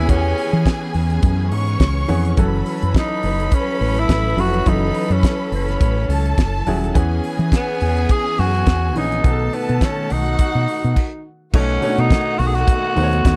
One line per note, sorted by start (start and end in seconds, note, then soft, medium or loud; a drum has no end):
0.00 0.09 E3 medium
0.00 2.34 E3 medium
0.00 0.09 B3 medium
0.00 2.34 B3 medium
0.00 0.09 C#4 medium
0.00 6.91 C#4 medium
0.00 0.12 E4 medium
0.00 0.17 G#4 medium
0.00 1.47 G#4 medium
0.00 2.34 G#4 medium
0.00 1.47 G#5 medium
0.09 0.33 E2 loud
0.09 1.01 E3 medium
0.09 1.01 B3 medium
0.09 1.01 C#4 medium
0.09 0.67 C#4 loud
0.09 0.16 G4 medium
0.09 kick loud
0.09 closed hi-hat medium
0.17 1.05 G#4 medium
0.38 open hi-hat medium
0.53 0.64 E3 medium
0.53 closed hi-hat soft
0.66 kick loud
0.66 snare loud
0.66 closed hi-hat medium
0.94 1.18 E2 medium
0.94 open hi-hat medium
1.10 closed hi-hat soft
1.22 1.52 F#2 medium
1.22 kick loud
1.22 closed hi-hat medium
1.51 1.76 G#2 medium
1.51 2.35 C#5 medium
1.51 2.36 C#6 medium
1.51 open hi-hat medium
1.67 closed hi-hat soft
1.80 2.04 C#2 medium
1.80 kick loud
1.80 snare loud
1.80 closed hi-hat medium
2.08 2.33 F2 medium
2.08 2.32 E3 medium
2.08 2.32 B3 medium
2.08 2.32 C#4 medium
2.08 2.33 G#4 medium
2.08 open hi-hat medium
2.25 closed hi-hat soft
2.37 2.61 F#1 loud
2.37 6.91 E3 medium
2.37 3.30 E3 medium
2.37 3.30 F#3 medium
2.37 6.91 F#3 medium
2.37 3.30 C#4 medium
2.37 6.91 A4 medium
2.37 3.30 A4 medium
2.37 6.05 B4 medium
2.37 6.05 B5 medium
2.37 kick loud
2.37 closed hi-hat medium
2.66 open hi-hat medium
2.82 2.93 F#2 medium
2.82 closed hi-hat soft
2.95 3.56 D#4 medium
2.95 kick loud
2.95 snare loud
2.95 closed hi-hat medium
3.23 3.47 F#1 medium
3.23 open hi-hat medium
3.40 closed hi-hat soft
3.52 4.01 C#4 medium
3.52 kick loud
3.52 closed hi-hat medium
3.81 4.04 A1 medium
3.81 open hi-hat medium
3.97 4.42 E4 loud
3.97 closed hi-hat soft
4.09 4.33 A1 medium
4.09 kick loud
4.09 snare loud
4.09 closed hi-hat medium
4.37 4.61 F1 loud
4.37 4.61 F#3 medium
4.37 4.61 C#4 medium
4.37 4.61 E4 medium
4.37 4.70 F#4 loud
4.37 4.62 A4 medium
4.37 open hi-hat medium
4.54 closed hi-hat soft
4.66 4.90 F#1 loud
4.66 5.59 E3 medium
4.66 5.58 F#3 medium
4.66 5.58 C#4 medium
4.66 5.14 D#4 loud
4.66 5.59 A4 medium
4.66 kick loud
4.66 closed hi-hat medium
4.94 open hi-hat medium
5.10 5.21 F#2 medium
5.10 5.53 C#4 medium
5.10 closed hi-hat soft
5.23 kick loud
5.23 snare loud
5.23 closed hi-hat medium
5.52 5.76 F#1 medium
5.52 6.64 C#4 medium
5.52 open hi-hat medium
5.68 snare soft
5.68 closed hi-hat soft
5.81 6.05 A1 medium
5.81 kick loud
5.81 closed hi-hat medium
6.09 6.33 C#2 medium
6.09 6.94 A4 medium
6.09 6.94 A5 medium
6.09 open hi-hat medium
6.26 closed hi-hat soft
6.38 6.62 F#1 medium
6.38 kick loud
6.38 snare medium
6.38 closed hi-hat medium
6.67 6.90 D#1 medium
6.67 6.90 F#3 medium
6.67 6.90 C#4 medium
6.67 6.91 E4 medium
6.67 6.91 G#4 medium
6.67 open hi-hat medium
6.84 closed hi-hat soft
6.94 7.19 E2 loud
6.94 7.87 E3 medium
6.94 9.22 E3 medium
6.94 7.87 B3 medium
6.94 10.93 B3 medium
6.94 9.22 C#4 medium
6.94 7.87 C#4 medium
6.94 9.20 G#4 medium
6.94 9.22 G#4 medium
6.94 7.88 G#4 medium
6.94 9.20 G#5 medium
6.94 kick loud
6.94 closed hi-hat medium
7.24 open hi-hat medium
7.39 7.50 E3 loud
7.39 closed hi-hat soft
7.52 8.13 B3 medium
7.52 kick loud
7.52 snare loud
7.52 closed hi-hat medium
7.81 8.05 E2 medium
7.81 open hi-hat medium
7.97 closed hi-hat soft
8.09 8.41 G#4 loud
8.09 kick loud
8.09 closed hi-hat medium
8.38 8.62 F#2 medium
8.38 8.96 F#4 loud
8.38 open hi-hat medium
8.55 closed hi-hat soft
8.66 8.95 E2 medium
8.66 kick loud
8.66 snare loud
8.66 closed hi-hat medium
8.95 9.19 A#1 medium
8.95 9.19 E3 medium
8.95 9.20 B3 medium
8.95 9.20 C#4 medium
8.95 9.20 D#4 medium
8.95 9.55 D#4 medium
8.95 open hi-hat medium
9.12 closed hi-hat soft
9.24 9.48 B1 loud
9.24 10.16 B2 medium
9.24 10.94 D#3 medium
9.24 10.94 A3 medium
9.24 10.16 B3 medium
9.24 10.17 D#4 medium
9.24 9.32 G#4 medium
9.24 10.09 A4 medium
9.24 10.09 A5 medium
9.24 kick loud
9.24 closed hi-hat medium
9.31 10.20 A4 medium
9.53 9.86 B3 medium
9.53 open hi-hat medium
9.69 9.80 B2 medium
9.69 closed hi-hat soft
9.81 10.14 C#4 medium
9.81 kick loud
9.81 snare loud
9.81 closed hi-hat medium
10.10 10.35 B1 medium
10.10 11.26 D#4 medium
10.10 10.95 F#4 medium
10.10 10.94 F#5 loud
10.10 open hi-hat medium
10.26 closed hi-hat soft
10.39 kick loud
10.39 closed hi-hat medium
10.55 10.65 B2 medium
10.68 open hi-hat medium
10.84 10.94 B2 medium
10.84 closed hi-hat soft
10.96 kick medium
10.96 crash medium
11.54 11.77 B1 loud
11.54 11.77 B2 medium
11.54 13.36 D#3 medium
11.54 11.77 A3 medium
11.54 13.36 A3 medium
11.54 13.36 B3 medium
11.54 12.01 C#4 loud
11.54 11.77 D#4 medium
11.54 13.36 F#4 medium
11.54 11.78 C#5 medium
11.54 13.36 F#5 medium
11.54 kick loud
11.54 crash loud
11.82 12.74 B2 medium
11.82 12.74 A3 medium
11.82 11.90 D4 medium
11.82 12.75 C#5 medium
11.82 open hi-hat medium
11.89 12.78 D#4 medium
11.98 12.08 B2 medium
11.98 12.40 D#4 loud
11.98 closed hi-hat soft
12.10 kick loud
12.10 snare loud
12.10 closed hi-hat medium
12.39 12.63 B1 medium
12.39 12.49 F#4 medium
12.39 open hi-hat medium
12.47 12.56 G#4 medium
12.55 13.36 F#4 loud
12.55 snare soft
12.55 closed hi-hat soft
12.67 kick loud
12.67 closed hi-hat medium
12.95 13.20 D#2 loud
12.95 13.36 B2 medium
12.95 13.36 A3 medium
12.95 13.36 D#4 medium
12.95 13.04 C5 medium
12.95 open hi-hat medium
13.03 13.36 C#5 medium
13.13 closed hi-hat soft
13.25 13.36 D#2 medium
13.25 kick loud
13.25 snare loud
13.25 closed hi-hat medium